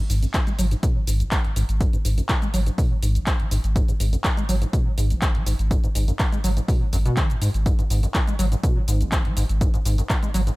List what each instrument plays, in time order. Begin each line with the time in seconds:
0.10 sub bass G#1, acid bass G#2, open hi-hat, shaker
0.23 acid bass F#2, closed hi-hat, shaker
0.34 acid bass A#2, kick, clap, closed hi-hat, shaker
0.47 acid bass G#3, closed hi-hat, shaker
0.59 sub bass G#1, acid bass F#3, open hi-hat, shaker
0.71 acid bass G#2, closed hi-hat, shaker
0.83 acid bass B2, kick, closed hi-hat, shaker
0.96 acid bass G#2
1.07 sub bass G#1, acid bass G#2, open hi-hat, shaker
1.20 acid bass G#1, closed hi-hat, shaker
1.31 kick, clap, closed hi-hat, shaker
1.45 acid bass G#3, closed hi-hat
1.56 sub bass G#1, acid bass G#2, open hi-hat, shaker
1.69 sub bass G#1, closed hi-hat, shaker
1.81 acid bass G#2, kick, closed hi-hat, shaker
1.93 acid bass G#2, closed hi-hat, shaker
2.05 sub bass G#1, acid bass G#2, open hi-hat, shaker
2.18 acid bass F#2, closed hi-hat, shaker
2.29 acid bass A#2, kick, clap, closed hi-hat, shaker
2.42 acid bass G#3, closed hi-hat, shaker
2.54 sub bass G#1, acid bass F#3, open hi-hat, shaker
2.66 acid bass G#2, closed hi-hat, shaker
2.78 acid bass B2, kick, open hi-hat, shaker
2.91 acid bass G#2
3.03 sub bass G#1, acid bass G#2, open hi-hat, shaker
3.15 acid bass G#1, closed hi-hat, shaker
3.26 kick, clap, closed hi-hat, shaker
3.40 acid bass G#3, closed hi-hat
3.51 sub bass G#1, acid bass G#2, open hi-hat, shaker
3.64 sub bass G#1, closed hi-hat, shaker
3.76 acid bass G#2, kick, closed hi-hat, shaker
3.88 acid bass G#2, closed hi-hat, shaker
4.00 sub bass G#1, acid bass G#2, open hi-hat, shaker
4.13 acid bass F#2, closed hi-hat, shaker
4.24 acid bass A#2, kick, clap, closed hi-hat, shaker
4.37 acid bass G#3, closed hi-hat, shaker
4.49 sub bass G#1, acid bass F#3, open hi-hat, shaker
4.62 acid bass G#2, closed hi-hat, shaker
4.73 acid bass B2, kick, closed hi-hat, shaker
4.86 acid bass G#2
4.98 sub bass G#1, acid bass G#2, open hi-hat, shaker
5.10 acid bass G#1, closed hi-hat, shaker
5.22 kick, clap, closed hi-hat, shaker
5.35 acid bass G#3, closed hi-hat
5.46 sub bass G#1, acid bass G#2, open hi-hat, shaker
5.59 sub bass G#1, closed hi-hat, shaker
5.71 acid bass G#2, kick, closed hi-hat, shaker
5.84 acid bass G#2, closed hi-hat, shaker
5.95 sub bass G#1, acid bass G#2, open hi-hat, shaker
6.08 acid bass F#2, closed hi-hat, shaker
6.19 acid bass A#2, kick, clap, closed hi-hat, shaker
6.32 acid bass G#3, closed hi-hat, shaker
6.44 sub bass G#1, acid bass F#3, open hi-hat, shaker
6.57 acid bass G#2, closed hi-hat, shaker
6.68 acid bass B2, kick, open hi-hat, shaker
6.81 acid bass G#2
6.93 sub bass G#1, acid bass F#2, open hi-hat, shaker
7.06 acid bass B2, closed hi-hat, shaker
7.17 acid bass D#3, kick, clap, closed hi-hat, shaker
7.30 acid bass G#2, closed hi-hat, shaker
7.42 acid bass G#2, sub bass G#2, open hi-hat, shaker
7.54 sub bass G#1, closed hi-hat, shaker
7.66 acid bass G#2, kick, closed hi-hat, shaker
7.79 acid bass G#2, closed hi-hat, shaker
7.90 sub bass G#1, acid bass G#2, open hi-hat, shaker
8.03 acid bass F#2, closed hi-hat, shaker
8.14 acid bass A#2, kick, clap, closed hi-hat, shaker
8.27 acid bass G#3, closed hi-hat, shaker
8.39 sub bass G#1, acid bass F#3, open hi-hat, shaker
8.52 acid bass G#2, closed hi-hat, shaker
8.63 acid bass B2, kick, closed hi-hat, shaker
8.76 acid bass G#2
8.88 sub bass G#1, acid bass G#2, open hi-hat, shaker
9.01 acid bass G#1, closed hi-hat, shaker
9.12 kick, clap, closed hi-hat, shaker
9.25 acid bass G#3, closed hi-hat
9.37 sub bass G#1, acid bass G#2, open hi-hat, shaker
9.49 sub bass G#1, closed hi-hat, shaker
9.61 acid bass G#2, kick, closed hi-hat, shaker
9.74 acid bass G#2, closed hi-hat, shaker
9.85 sub bass G#1, acid bass G#2, open hi-hat, shaker
9.98 acid bass F#2, closed hi-hat, shaker
10.09 acid bass A#2, kick, clap, closed hi-hat, shaker
10.23 acid bass G#3, closed hi-hat, shaker
10.34 sub bass G#1, acid bass F#3, open hi-hat, shaker
10.47 acid bass G#2, closed hi-hat, shaker